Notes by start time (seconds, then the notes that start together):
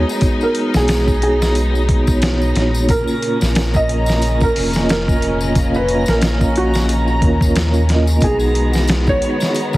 Already playing: G#3 B3 D#4 F#4 C#5 A#5
0.09 tambourine
0.18 B3 D#4, kick, closed hi-hat
0.23 F#4, tambourine
0.27 G#4
0.41 A#4, tambourine
0.55 closed hi-hat
0.74 B1 G#4, snare, tambourine
0.88 snare, closed hi-hat, tambourine
1.07 kick, tambourine
1.22 G#4, closed hi-hat
1.42 snare, tambourine, triangle
1.55 closed hi-hat, tambourine
1.75 tambourine
1.89 kick, closed hi-hat
2.03 B3 D#4, tambourine
2.08 F#4, kick
2.12 C#5
2.22 snare, closed hi-hat, tambourine
2.42 tambourine
2.55 A#1, snare, closed hi-hat
2.74 tambourine
2.85 A#2 C#3 A#3 C#4, closed hi-hat
2.89 F4 A#4, kick, tambourine
2.93 A#4
3.07 tambourine, triangle
3.22 closed hi-hat
3.41 A#1, snare, tambourine
3.55 snare, closed hi-hat, tambourine
3.74 D#5, kick, tambourine
3.89 closed hi-hat
4.06 snare, tambourine, triangle
4.22 closed hi-hat, tambourine
4.40 A#4, kick, tambourine
4.56 F1, open hi-hat
4.71 A#3 C#4, tambourine
4.76 F4 D#5, snare
4.89 A#4, snare, closed hi-hat, tambourine
5.08 kick, tambourine
5.22 closed hi-hat
5.41 tambourine
5.54 C#4 F5, kick, closed hi-hat, tambourine
5.60 C#5
5.75 B4, tambourine
5.89 closed hi-hat
6.06 A#1 A#4, snare, tambourine
6.22 snare, closed hi-hat, tambourine
6.41 kick, tambourine
6.56 F#4, closed hi-hat
6.74 snare, tambourine, triangle
6.89 closed hi-hat, tambourine
7.08 tambourine
7.20 D#2 A#3 C#4 F4, kick, closed hi-hat
7.24 A#4
7.41 kick, tambourine
7.56 snare, closed hi-hat, tambourine
7.74 tambourine
7.87 A#3 C#4 F4, snare, closed hi-hat
7.91 D#5
8.07 tambourine
8.17 B3 D#4, tambourine
8.22 B1 D#3 G#3 B3 F#4 G#4, kick, closed hi-hat
8.39 tambourine, triangle
8.55 closed hi-hat
8.73 snare, tambourine
8.87 snare, closed hi-hat, tambourine
9.07 C#5, kick, tambourine
9.22 closed hi-hat
9.40 snare, tambourine, triangle
9.55 closed hi-hat, tambourine
9.73 tambourine